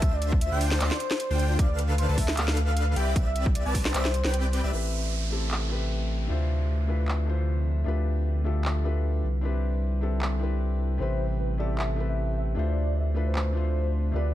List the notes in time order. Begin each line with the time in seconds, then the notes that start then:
Already playing: E5
0.02 D2 D3 D4 F4 C5 E5, kick, closed hi-hat
0.13 D5
0.22 closed hi-hat
0.32 kick
0.41 E5, closed hi-hat
0.52 D2 D3 D4 F4 C5 G5
0.61 open hi-hat
0.72 C5, snare
0.80 D2 D3 D4 F4 C5 D5, clap, closed hi-hat
0.91 snare
1.00 closed hi-hat
1.11 snare
1.20 closed hi-hat
1.30 D2 D3 D4 F4 C5 G5
1.39 closed hi-hat
1.59 D2 D5 F5, kick, closed hi-hat
1.79 closed hi-hat
1.98 C5, closed hi-hat
2.09 D2 D3 D4 A4 B4 A5
2.18 E5, kick, open hi-hat
2.28 snare
2.37 D2 D3 D4 A4 B4 F5, clap, closed hi-hat
2.48 snare
2.57 closed hi-hat
2.67 F5
2.77 closed hi-hat
2.96 C2 C4 G4 B4 D5 E5 G5, closed hi-hat
3.16 C2 C4 G4 B4 D5 E5, kick, closed hi-hat
3.26 E5
3.36 closed hi-hat
3.46 kick
3.55 D5, closed hi-hat
3.66 C2 C4 G4 B4 D5 A5
3.75 kick, open hi-hat
3.85 C5, snare
3.94 C2 C4 G4 B4 D5 E5, clap, closed hi-hat
4.05 snare
4.14 closed hi-hat
4.25 C2 C4 G4 B4 D5 G5, snare
4.34 closed hi-hat
4.53 closed hi-hat
4.64 C2 C4 G4 B4 D5 E5
4.71 A1 C3 A3 C4 E4 G4 B4, downlifter
5.30 A3 C4 E4 G4 A4
5.51 clap
5.69 A3 C4 E4 G4
5.73 B4
6.28 D2 D3 F3 A3 C4 D4 E4 F4 C5 E5
6.87 A3 D4 E4 F4 B4
7.08 clap
7.26 A3 D4 E4 F4
7.30 C5
7.84 D2 D3 G3 A3 D4 F4 G4 B4
8.44 A3 D4 F4 G4 A4
8.65 clap
8.83 A3 D4 F4 G4 B4
9.23 C2 C3 E4
9.41 C4 D4 E4 G4
9.45 B4
10.01 C4 D4 E4 G4 A4
10.22 clap
10.39 C4 D4 E4 G4
10.43 B4
10.98 A1 C3 A3 C4 E4 G4 C5
11.02 B4
11.39 B4
11.58 A3 C4 E4 G4 A4 D5
11.78 E5, clap
11.96 A3 C4 E4 G4
12.00 B4
12.09 E5
12.37 E5
12.55 D2 D3 F3 A3 C4 D4 E4 F4 E5
12.59 C5
12.67 D5
12.96 E5
13.15 A3 D4 E4 F4 B4
13.26 C5
13.35 clap
13.53 A3 D4 E4 F4 C5
14.12 D2 G3 A3 D4 F4 G4 D5
14.16 B4